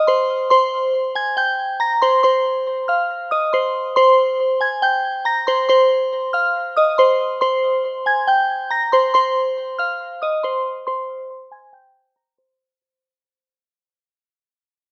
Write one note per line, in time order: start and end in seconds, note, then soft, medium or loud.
0.07 0.48 C5 medium
0.07 0.48 C6 loud
0.50 1.12 C5 medium
0.50 1.11 C6 loud
1.15 1.35 G#5 medium
1.15 1.36 G#6 medium
1.37 1.77 G5 medium
1.37 1.78 G6 medium
1.80 2.00 A#5 medium
1.80 2.00 A#6 medium
2.02 2.22 C5 medium
2.02 2.21 C6 medium
2.23 2.84 C5 medium
2.23 2.84 C6 loud
2.88 3.29 F5 medium
2.88 3.29 F6 medium
3.31 3.51 D#5 medium
3.31 3.51 D#6 medium
3.53 3.94 C5 medium
3.53 3.93 C6 medium
3.96 4.57 C5 medium
3.96 4.57 C6 loud
4.61 4.80 G#5 medium
4.61 4.81 G#6 medium
4.82 5.23 G5 medium
4.82 5.23 G6 medium
5.25 5.45 A#5 medium
5.25 5.45 A#6 medium
5.47 5.67 C5 medium
5.47 5.67 C6 medium
5.69 6.30 C5 medium
5.69 6.29 C6 loud
6.33 6.74 F5 medium
6.33 6.74 F6 medium
6.76 6.97 D#5 medium
6.76 6.96 D#6 medium
6.98 7.39 C5 medium
6.98 7.39 C6 loud
7.41 8.02 C5 medium
7.41 8.02 C6 loud
8.06 8.26 G#5 medium
8.06 8.26 G#6 medium
8.27 8.68 G5 medium
8.27 8.68 G6 medium
8.71 8.90 A#5 medium
8.71 8.91 A#6 medium
8.92 9.12 C5 medium
8.92 9.12 C6 medium
9.14 9.75 C5 medium
9.14 9.75 C6 loud
9.79 10.20 F5 medium
9.79 10.19 F6 medium
10.22 10.42 D#5 medium
10.22 10.41 D#6 medium
10.43 10.84 C5 medium
10.43 10.84 C6 medium
10.87 11.48 C5 medium
10.87 11.48 C6 loud
11.51 11.71 G#5 medium
11.51 11.72 G#6 medium
11.73 12.13 G5 medium
11.73 12.14 G6 medium
12.16 12.36 A#5 medium
12.16 12.36 A#6 medium
12.38 12.58 C5 medium
12.38 12.57 C6 medium